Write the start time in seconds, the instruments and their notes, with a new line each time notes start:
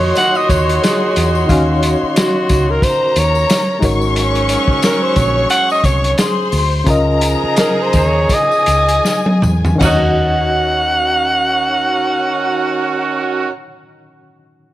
Already playing: fingered electric bass F2, horn section A#2 D#4 F#4, reed electric piano D#3 D#4 F4 F#4 C#5, alto saxophone C#5, string section C#5 C6
0.15 alto saxophone F#5, snare, closed hi-hat, tambourine
0.35 alto saxophone D#5, tambourine
0.49 fingered electric bass D#2, alto saxophone C#5, kick, closed hi-hat, tambourine
0.69 closed hi-hat
0.83 alto saxophone G#4, snare, closed hi-hat, tambourine
1.16 fingered electric bass E2, closed hi-hat, tambourine
1.35 tambourine
1.46 fingered electric bass D#2, reed electric piano D#3 D#4 F5, kick, closed hi-hat, tambourine
1.51 reed electric piano C#4 F#4
1.83 closed hi-hat, tambourine
2.03 muted fingered electric bass stroke
2.16 alto saxophone F#4, snare, closed hi-hat, tambourine
2.49 fingered electric bass C#2, kick, closed hi-hat, tambourine
2.70 alto saxophone A#4
2.82 string section A#4 A#5, alto saxophone C5, kick, closed hi-hat, tambourine
3.16 fingered electric bass D#2, alto saxophone C#5, closed hi-hat, tambourine
3.35 tambourine
3.50 snare, closed hi-hat, tambourine
3.79 fingered electric bass G#1, horn section G#2 F#3 C#4, reed electric piano G#3 D#4 F#4, string section C#5 C#6, kick, closed hi-hat, tambourine
3.83 reed electric piano A#4 C#5
4.01 tambourine
4.16 closed hi-hat, tambourine
4.35 closed hi-hat
4.49 closed hi-hat, tambourine
4.68 muted fingered electric bass stroke, kick
4.82 alto saxophone A#4, snare, closed hi-hat, tambourine
5.03 alto saxophone C5
5.16 fingered electric bass A#1, alto saxophone C#5, kick, closed hi-hat, tambourine
5.50 alto saxophone F#5, closed hi-hat, tambourine
5.70 alto saxophone D#5, tambourine
5.84 fingered electric bass C2, alto saxophone C#5, kick, closed hi-hat, tambourine
6.04 closed hi-hat
6.18 alto saxophone G#4, string section C5 C6, snare, closed hi-hat, tambourine
6.52 fingered electric bass D2, open hi-hat, tambourine
6.84 fingered electric bass C#2, reed electric piano C#3 C#4 F4, horn section F3 D#4 G#4, string section A#4 A#5, kick, closed hi-hat, tambourine
6.89 reed electric piano A#4 D#5
7.21 closed hi-hat, tambourine
7.44 muted fingered electric bass stroke
7.57 alto saxophone A#4, snare, closed hi-hat, tambourine
7.82 alto saxophone C5
7.93 fingered electric bass D#2, alto saxophone C#5, kick, closed hi-hat, tambourine
8.29 string section G#4 G#5, kick, snare, closed hi-hat, tambourine
8.34 alto saxophone D#5
8.52 tambourine
8.66 fingered electric bass C#2, closed hi-hat, tambourine
8.89 closed hi-hat
9.05 snare, tambourine
9.26 high tom
9.42 fingered electric bass E2, mid tom, tambourine
9.65 floor tom, tambourine
9.76 reed electric piano D#3 C#4
9.81 fingered electric bass D#2, horn section D#3 C#4 F#4, string section D#4 C#5 F#5, reed electric piano D#4 F#4, alto saxophone F#5, kick, floor tom, tambourine, crash
9.87 reed electric piano D#5